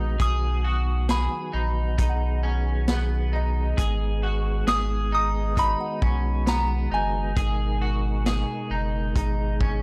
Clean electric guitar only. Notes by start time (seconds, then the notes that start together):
Already playing: D#4
0.20 G#4
0.64 F#4
1.09 G#4
1.53 D#4
1.98 D#4
2.43 C#4
2.88 B3
3.33 D#4
3.77 G#4
4.23 F#4
4.67 G#4
5.12 D#4
5.57 D#4
6.02 C#4
6.46 B3
6.92 D#4
7.37 G#4
7.82 F#4
8.26 G#4
8.71 D#4
9.16 D#4
9.61 C#4